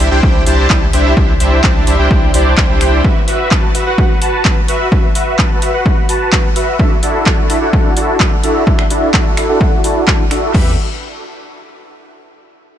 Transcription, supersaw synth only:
0.11 0.21 D4 medium
0.11 0.21 E4 medium
0.11 0.21 G4 medium
0.11 0.21 C5 medium
0.11 0.21 G5 medium
0.23 0.43 E4 medium
0.23 0.43 G4 medium
0.23 0.43 C5 medium
0.47 0.67 D4 medium
0.47 0.67 E4 medium
0.47 0.67 G4 medium
0.47 0.67 C5 medium
0.47 0.67 A5 loud
0.70 0.85 E4 medium
0.70 0.85 C5 medium
0.93 1.13 D4 medium
0.93 1.13 E4 medium
0.93 1.13 G4 medium
0.93 1.13 C5 medium
0.93 1.13 E5 loud
1.17 1.32 D4 medium
1.17 1.32 E4 medium
1.17 1.32 G4 medium
1.17 1.32 C5 medium
1.40 1.61 D4 medium
1.40 1.61 E4 medium
1.40 1.61 G4 medium
1.40 1.61 C5 medium
1.40 1.61 E5 medium
1.64 1.84 D4 medium
1.64 1.84 C5 medium
1.87 1.96 D4 medium
1.87 1.96 E4 medium
1.87 1.96 G4 medium
1.87 1.96 C5 medium
1.87 1.96 E5 medium
1.99 2.09 D4 medium
1.99 2.09 E4 medium
1.99 2.09 G4 medium
1.99 2.09 C5 medium
1.99 2.09 G5 medium
2.11 2.31 E4 medium
2.11 2.31 C5 medium
2.34 2.54 D4 medium
2.34 2.54 E4 medium
2.34 2.54 G4 medium
2.34 2.54 C5 medium
2.34 2.54 D5 medium
2.69 2.79 D4 medium
2.69 2.79 E4 medium
2.69 2.79 G4 medium
2.69 2.79 C5 medium
2.69 2.79 G5 loud
2.81 3.02 D4 medium
2.81 3.02 E4 medium
2.81 3.02 G4 medium
2.81 3.02 C5 medium
2.81 3.02 G5 medium
3.04 3.20 F#4 medium
3.04 3.20 B4 medium
3.28 3.48 F#4 medium
3.28 3.48 B4 medium
3.28 3.48 E5 medium
3.51 3.72 F#4 medium
3.51 3.72 B4 medium
3.51 3.72 A5 medium
3.75 3.84 F#4 medium
3.75 3.84 B4 medium
3.75 3.84 E5 medium
3.86 3.96 F#4 medium
3.86 3.96 B4 medium
3.86 3.96 F#5 medium
3.98 4.18 F#4 medium
3.98 4.18 B4 medium
3.98 4.18 F#5 loud
4.22 4.42 F#4 medium
4.22 4.42 B4 medium
4.22 4.42 A5 loud
4.45 4.60 B4 medium
4.69 4.88 F#4 medium
4.69 4.88 B4 medium
4.69 4.88 E5 loud
4.92 5.07 F#4 medium
4.92 5.07 E5 medium
5.15 5.36 F#4 medium
5.15 5.36 B4 medium
5.15 5.36 E5 medium
5.39 5.59 F#4 medium
5.39 5.59 B4 medium
5.62 5.71 F#4 medium
5.62 5.71 B4 medium
5.62 5.71 E5 medium
5.74 5.84 F#4 medium
5.74 5.84 B4 medium
5.74 5.84 F#5 medium
5.86 6.06 F#4 medium
5.86 6.06 B4 medium
5.86 6.06 F#5 loud
6.09 6.30 F#4 medium
6.09 6.30 B4 medium
6.09 6.30 A5 loud
6.33 6.48 F#4 medium
6.33 6.48 B4 medium
6.56 6.76 F#4 medium
6.56 6.76 B4 medium
6.56 6.76 E5 loud
6.79 6.95 D4 medium
6.79 6.95 E4 medium
6.79 6.95 F#4 medium
6.79 6.95 A4 medium
6.79 6.95 E5 medium
7.03 7.24 D4 medium
7.03 7.24 E4 medium
7.03 7.24 F#4 medium
7.03 7.24 A4 medium
7.03 7.24 E5 medium
7.26 7.47 E4 medium
7.26 7.47 F#4 medium
7.26 7.47 A4 medium
7.50 7.59 D4 medium
7.50 7.59 E4 medium
7.50 7.59 F#4 medium
7.50 7.59 A4 medium
7.50 7.59 E5 medium
7.62 7.72 D4 medium
7.62 7.72 E4 medium
7.62 7.71 F#4 medium
7.62 7.71 A4 medium
7.62 7.71 F#5 medium
7.73 7.93 D4 medium
7.73 7.93 E4 medium
7.73 7.93 F#4 medium
7.73 7.93 A4 medium
7.73 7.93 F#5 loud
7.97 8.17 D4 medium
7.97 8.17 E4 medium
7.97 8.17 F#4 medium
7.97 8.17 A4 medium
7.97 8.17 A5 loud
8.20 8.35 D4 medium
8.20 8.35 E4 medium
8.20 8.35 F#4 medium
8.20 8.35 A4 medium
8.20 8.35 A5 medium
8.44 8.63 D4 medium
8.44 8.64 E4 medium
8.44 8.63 F#4 medium
8.44 8.63 A4 medium
8.44 8.63 E5 loud
8.67 8.82 D4 medium
8.67 8.82 F#4 medium
8.67 8.82 A4 medium
8.90 9.11 D4 medium
8.90 9.11 E4 medium
8.90 9.11 F#4 medium
8.90 9.11 A4 medium
8.90 9.11 E5 medium
9.14 9.35 D4 medium
9.14 9.34 F#4 medium
9.14 9.35 A4 medium
9.14 9.34 A5 medium
9.37 9.46 D4 medium
9.37 9.46 E4 medium
9.37 9.46 F#4 medium
9.37 9.46 A4 medium
9.37 9.46 E5 medium
9.49 9.59 D4 medium
9.49 9.59 E4 medium
9.49 9.59 F#4 medium
9.49 9.59 A4 medium
9.49 9.59 F#5 medium
9.84 10.05 D4 medium
9.84 10.05 E4 medium
9.84 10.05 F#4 medium
9.84 10.05 A4 medium
9.84 10.05 A5 loud
10.08 10.23 D4 medium
10.08 10.23 A4 medium
10.08 10.23 A5 medium
10.31 10.51 D4 medium
10.31 10.51 E4 medium
10.31 10.51 F#4 medium
10.31 10.51 A4 medium
10.31 10.51 E5 loud
10.54 10.72 G4 medium
10.54 10.72 B4 medium
10.54 10.72 E5 medium

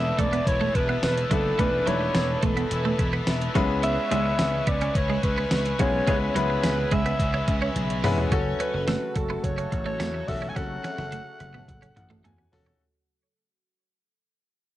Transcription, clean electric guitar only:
0.19 0.27 A3 medium
0.33 0.42 B3 medium
0.61 0.70 A3 medium
0.75 muted clean electric guitar stroke soft
0.89 0.98 B3 medium
1.31 1.39 F#3 medium
1.59 1.68 A3 medium
1.87 1.96 F#3 medium
2.01 muted clean electric guitar stroke soft
2.15 muted clean electric guitar stroke soft
2.43 2.52 A3 medium
2.57 2.66 B3 medium
2.85 2.94 A3 medium
2.99 muted clean electric guitar stroke medium
3.13 3.22 B3 medium
3.55 3.64 F#3 medium
3.84 3.92 B3 medium
4.11 4.20 G#3 medium
4.25 muted clean electric guitar stroke soft
4.39 muted clean electric guitar stroke soft
4.67 4.76 B3 medium
4.82 4.90 C#4 medium
5.10 5.18 G#3 medium
5.24 muted clean electric guitar stroke soft
5.38 5.46 B3 medium
5.80 5.88 F#3 medium
6.08 6.16 G#3 medium
6.35 6.44 F#3 medium
6.50 muted clean electric guitar stroke soft
6.64 muted clean electric guitar stroke soft
6.92 7.01 G#3 medium
7.06 7.14 B3 medium
7.34 7.43 C#4 medium
7.48 muted clean electric guitar stroke soft
7.62 7.71 C#4 medium
8.04 8.13 B3 medium
8.32 8.41 C#4 medium
8.60 8.69 C#4 medium
8.74 muted clean electric guitar stroke soft
8.88 8.97 A3 medium
9.16 muted clean electric guitar stroke soft
9.30 9.39 B3 medium
9.58 9.67 C#4 medium
9.72 muted clean electric guitar stroke soft
9.86 9.95 A3 medium
10.00 10.09 A3 medium
10.14 muted clean electric guitar stroke soft
10.42 10.51 C#4 medium
10.56 10.65 C#4 medium
10.84 10.93 C#4 medium
10.98 muted clean electric guitar stroke soft
11.12 11.21 A3 medium
11.40 muted clean electric guitar stroke soft
11.54 11.63 B3 medium
11.82 11.91 C#4 medium
11.96 muted clean electric guitar stroke soft
12.10 12.19 A3 medium
12.24 12.33 A3 medium
12.38 muted clean electric guitar stroke soft
12.66 12.75 C#4 medium

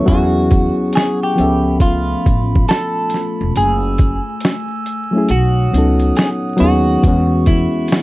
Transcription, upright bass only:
0.08 0.69 E2 loud
1.39 2.13 C#2 medium
2.26 2.63 A1 loud
3.41 3.53 E1 medium
3.56 4.17 F#1 medium
5.30 5.67 B1 loud
5.73 6.10 C#2 medium
6.61 6.97 D#2 medium
7.04 7.65 E2 loud

